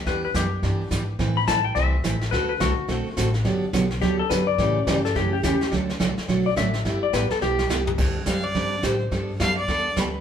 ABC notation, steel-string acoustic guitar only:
X:1
M:4/4
L:1/8
Q:"Swing" 1/4=212
K:G
V:1 name="Steel-string acoustic guitar"
[E,B,DG] z [E,B,DG] z [E,B,DG] z [E,B,DG] z | [E,A,CEB] z [E,A,CEB] z [E,A,CEB] z [E,A,CEB] z | [D,A,CFA] z [D,A,CFA] z [D,A,CFA] z [D,A,CFA] z | [D,F,B,DG] z [D,F,B,DG] z [D,F,B,DG] z [D,F,B,DG] z |
[^C,E,A,^CG] z [C,E,A,CG] z [C,E,A,CG] z [C,E,A,CG] z | [D,F,A,DF] z [D,F,A,DF] z [D,F,A,DF] z [D,F,A,DF] z | [G,B,EG] z [G,B,EG] z [G,B,EG] z [G,B,EG] z | [D,G,CDG] z [D,G,CDG] z [D,G,CDG] z [D,G,CDG] z |
[G,B,DA] z [G,B,DA] z [G,B,DA] z [G,B,DA] z |]